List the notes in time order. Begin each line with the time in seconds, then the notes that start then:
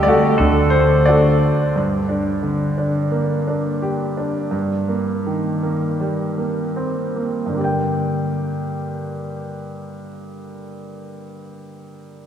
Already playing: D2 D3 G3 A3 G4 A4 D5 D#5 G5
0.03 A3 D5
0.08 F#4 A4
0.38 D2 D3 A4
0.70 C5
1.05 A3 D4 F#4 A4 D5
1.76 G2
2.09 D4
2.43 D3
2.78 D4
3.12 A#3
3.48 D4
3.82 G4
4.17 D4
4.51 G2
4.88 A#3
5.27 D#3
5.63 A#3
6.00 G3
6.38 A#3
6.76 C4
7.16 A#3
7.46 G2 D3
7.53 A#3
7.57 G4 D5
7.64 G5